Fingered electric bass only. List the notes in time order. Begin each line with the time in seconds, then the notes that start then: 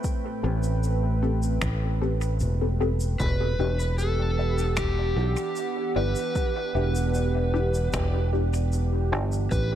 0.44 A1
1.62 A1
2.41 E1
3.20 E1
3.59 E1
5.16 B1
5.96 G1
6.75 E1
7.93 E1
9.12 G1
9.52 A1